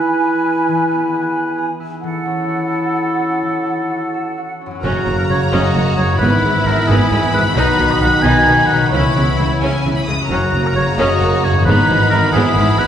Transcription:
Already playing: E3 B3 E4 G#4 B4 G#5
0.01 B4
0.24 G#4
0.46 E4
0.68 E3
0.91 B3
1.14 G#4
1.36 B4
1.58 G#4
1.80 E4
2.02 E3 E4 A4 F#5
2.26 C#4
2.48 F#4
2.72 A4
2.96 F#4
3.19 C#4
3.42 E3
3.66 E4
3.89 F#4
4.14 A4
4.37 F#4
4.61 C#4
4.66 F#2
4.71 C#4
4.75 F#4
4.80 F#1 F#4 A#4
4.84 F#2 C#3 A#3 C#4 F#4 A#5
5.07 F#1 F#2 A#3
5.18 A#4
5.30 F#1 F#2 F#3 C#5
5.52 F#1 F#2 C#4 F#4 D#5
5.75 F#1 F#2 A#3
5.97 F#1 F#2 F#3 C#5
6.03 G#2
6.08 B3
6.12 E4
6.17 G#1 B3 E4 B4 B5
6.22 G#2 E3 B3 E4
6.43 G#1 G#2 G#3
6.65 G#1 G#2 E3 A#4
6.88 G#1 G#2 B3 G#4
7.11 G#1 G#2 G#3
7.33 G#1 G#2 E3 B4
7.39 B2
7.43 D#4
7.48 F#4
7.52 B2 B4
7.57 B1 D#3 D#4 F#4 B4
7.78 B1 B2 B3
7.91 D#5
8.00 B1 B2 F#3 F#5
8.22 B1 B2 D#4 G#5
8.47 B1 B2 B3
8.67 B1 B2 F#3 F#5
8.75 C#3
8.79 C#4
8.84 E4
8.88 B4 C#5
8.92 C#2 C#3 E3 B3 C#4 E4 B5
9.16 C#2 C#3 B3
9.39 C#2 C#3 G#3
9.61 C#2 C#3 C#4 G#5
9.84 C#2 C#3 B3
9.96 B5
10.05 C#2 C#3 G#3 D#6
10.12 F#2
10.17 C#4
10.21 F#4
10.26 F#2 A#4
10.30 F#1 C#3 A#3 C#4 F#4 A#5
10.53 F#1 F#2 A#3
10.66 A#4
10.75 F#1 F#2 F#3 C#5
10.98 F#1 F#2 C#4 F#4 D#5
11.20 F#1 F#2 A#3
11.43 F#1 F#2 F#3 C#5
11.49 G#2
11.54 B3
11.58 E3
11.63 G#1 B4
11.67 G#2 E3 B3 D#4 B5
11.89 G#1 G#2 G#3
12.10 G#1 G#2 E3 A#4
12.32 G#1 G#2 B3 E4 G#4
12.56 G#1 G#2 G#3
12.79 G#1 G#2 E3 B4

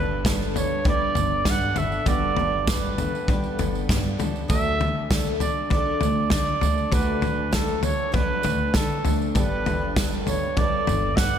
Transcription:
Already playing: G1 G2 G3 B3 D4 A4 B4
0.25 G3 B3 D4 A4, kick, snare, floor tom, tambourine
0.42 tambourine
0.54 B3 D4 A4 C#5, floor tom, tambourine
0.84 G3 B3 D4 A4, kick, floor tom
0.89 D5
1.15 G1 B3 D4 A4, floor tom, tambourine
1.45 G2 G3 B3 D4 A4, kick, snare, floor tom, tambourine
1.49 F#5
1.76 G1 B3 D4 A4 E5, floor tom, tambourine
1.92 tambourine
2.06 G1 G2 G3 B3 D4 F#4 A4 D5, kick, floor tom, tambourine
2.37 D4 A4, floor tom
2.42 B3
2.67 G3 B3 D4 A4 B4, kick, snare, floor tom, tambourine
2.98 B3 D4 A4, floor tom, tambourine
3.15 tambourine
3.28 G3 B3 D4 A4, kick, floor tom, tambourine
3.44 tambourine
3.58 G1 D4 A4, floor tom, tambourine
3.63 B3
3.75 tambourine
3.89 G2 G3 B3 D4 A4, kick, snare, floor tom, tambourine
4.18 C#2 B3 D4 A4, floor tom, tambourine
4.36 tambourine
4.48 D2 D3 F#3 A3 D4 A4 E5, kick, floor tom, tambourine
4.80 A3 D4 A4, floor tom, tambourine
5.10 F#3 A3 D4 A4, kick, snare, floor tom, tambourine
5.27 tambourine
5.40 A3 D4 A4 D5, floor tom, tambourine
5.70 D3 F#3 A3 D5, kick, floor tom
5.74 D4 A4
6.01 D2 D4 A4, floor tom, tambourine
6.05 A3
6.30 D3 F#3 A3 D5, kick, snare, floor tom, tambourine
6.35 D4 A4
6.61 D2 A3 D4 A4, floor tom, tambourine
6.78 tambourine
6.92 D2 D3 F#3 A3 D4 F#4 A4 B4, kick, floor tom, tambourine
7.21 A3 D4 A4, floor tom, tambourine
7.51 F#3 A3 D4 A4, kick, snare, floor tom, tambourine
7.67 tambourine
7.83 A3 D4 A4 C#5, floor tom, tambourine
8.12 D3 F#3 A3 D4 A4 B4, kick, floor tom
8.42 D2 A3 D4 A4, floor tom, tambourine
8.74 D3 F#3 A3 D4 A4, kick, snare, floor tom, tambourine
9.05 D2 A3 D4 A4, floor tom, tambourine
9.22 tambourine
9.35 G1 G2 G3 B3 D4 A4 B4, kick, floor tom, tambourine
9.66 B3 D4 A4, floor tom, tambourine
9.96 G3 B3 D4 A4, kick, snare, floor tom, tambourine
10.12 tambourine
10.26 B3 D4 A4 C#5, floor tom, tambourine
10.57 G3 B3 D4 A4 D5, kick, floor tom
10.87 G1 D4 A4, floor tom, tambourine
11.17 G2 G3 B3 D4 A4 F#5, kick, snare, floor tom, tambourine

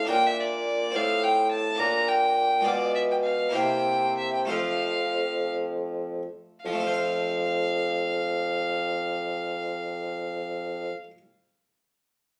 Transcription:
Already playing: A2
0.05 D4 F4 A#4
0.10 A#2 G5
0.26 E5
0.40 D5
0.91 C4 F4 C5
0.95 A2 F5
1.23 G5
1.51 A5
1.75 A#3 D4 D5
1.79 A#2 A#5
2.08 G5
2.61 G#3 F4 D5
2.65 B2
2.95 E5
3.11 G5
3.24 F5
3.49 A#3 E4 C5
3.54 C3 G5
4.18 E5
4.34 G5
4.45 F2 A3 F4 C5
4.50 F2 F5
6.65 F2 F3 F5
6.73 A3
6.80 F4
6.87 C5
6.94 F5

